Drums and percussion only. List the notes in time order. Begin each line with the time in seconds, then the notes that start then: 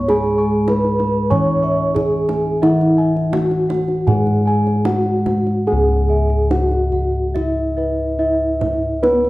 0.09 kendang high
0.24 kendang slap
0.68 kendang high
0.84 kendang slap
1.00 kendang high
1.31 kendang low
1.96 kendang low
2.29 kendang high
2.63 kendang high
2.81 kendang slap
3.17 kendang slap
3.33 kendang high
3.51 kendang slap
3.70 kendang high
3.88 kendang slap
4.07 kendang low
4.27 kendang slap
4.67 kendang slap
4.85 kendang high
5.06 kendang slap
5.26 kendang high, kendang low
5.47 kendang slap
5.67 kendang high
5.88 kendang slap
6.30 kendang slap
6.51 kendang slap, kendang high
6.71 kendang slap
6.92 kendang low
7.35 kendang low
8.61 kendang high, kendang low
9.04 kendang high
9.25 kendang slap